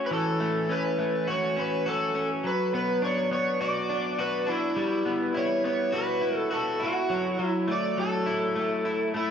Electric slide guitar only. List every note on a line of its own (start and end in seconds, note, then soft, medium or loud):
0.06 0.12 B4 medium
0.13 0.72 A4 medium
0.71 1.30 B4 medium
1.30 1.59 C#5 medium
1.59 1.88 B4 medium
1.89 2.28 A4 medium
2.47 2.74 B4 medium
2.75 3.04 B4 medium
3.04 3.32 C#5 medium
3.33 3.61 C#5 medium
3.62 4.21 D5 loud
4.20 4.49 B4 medium
4.48 5.38 E4 medium
5.37 5.65 C#5 medium
5.66 5.95 C#5 loud
5.96 6.37 B4 medium
6.37 6.49 A4 medium
6.54 6.83 A4 medium
6.83 7.47 F#4 medium
7.47 7.72 E4 medium
7.71 7.97 D5 medium
8.00 9.11 A4 medium
9.17 9.31 E4 medium